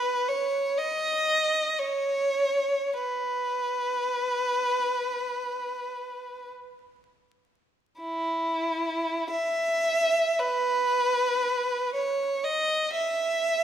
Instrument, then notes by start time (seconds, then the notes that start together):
violin
Already playing: B4
0.28 C#5
0.78 D#5
1.79 C#5
2.93 B4
8.00 E4
9.31 E5
10.39 B4
11.93 C#5
12.44 D#5
12.94 E5